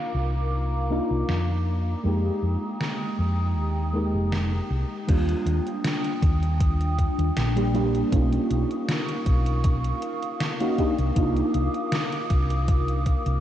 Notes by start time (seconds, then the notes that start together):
Already playing: A#3 D4 D#4 F4 A#4 F5 A#5 D6
0.15 C2
0.90 A#3 D4 D#4 F4
1.11 C2
1.29 F2, snare
1.67 G#3 G5 A#5 D#6
2.03 F2 G#3 A#3 D#4 G4
2.42 F2
2.80 snare
3.19 F2
3.56 D#2
3.93 G#3 A#3 D#4 G4
4.14 F1
4.32 snare
4.70 C2
5.07 D#2 G3 A#3 D4 F4 G5 D#6, kick, closed hi-hat, crash
5.29 closed hi-hat
5.46 D#2, closed hi-hat
5.67 closed hi-hat
5.84 snare, closed hi-hat
6.04 closed hi-hat
6.22 D#2, kick, closed hi-hat
6.43 closed hi-hat
6.61 kick, closed hi-hat
6.81 closed hi-hat
6.99 kick, closed hi-hat
7.18 D#2, closed hi-hat
7.37 A#1, snare, closed hi-hat
7.56 G3 A#3 D4 G4, closed hi-hat
7.74 G3 A#3 D4 G4, closed hi-hat
7.95 closed hi-hat
8.11 B1 A#3 C#4 D#4 F4 A#4 F5 C#6 D#6, kick, closed hi-hat
8.33 closed hi-hat
8.51 B1, closed hi-hat
8.71 closed hi-hat
8.89 snare, closed hi-hat
9.09 closed hi-hat
9.26 B1, kick, closed hi-hat
9.46 closed hi-hat
9.64 kick, closed hi-hat
9.84 closed hi-hat
10.02 closed hi-hat
10.22 closed hi-hat
10.40 snare, closed hi-hat
10.60 A#3 C#4 D#4 F#4, closed hi-hat
10.78 A#3 D4 D#4 G4 D6, kick, closed hi-hat
10.98 C2, closed hi-hat
11.15 C2 A#3 D4 D#4 F4, kick, closed hi-hat
11.36 closed hi-hat
11.54 C2, closed hi-hat
11.74 closed hi-hat
11.92 snare, closed hi-hat
12.12 closed hi-hat
12.30 C2, kick, closed hi-hat
12.50 closed hi-hat
12.68 kick, closed hi-hat
12.88 closed hi-hat
13.06 kick, closed hi-hat
13.26 C2, closed hi-hat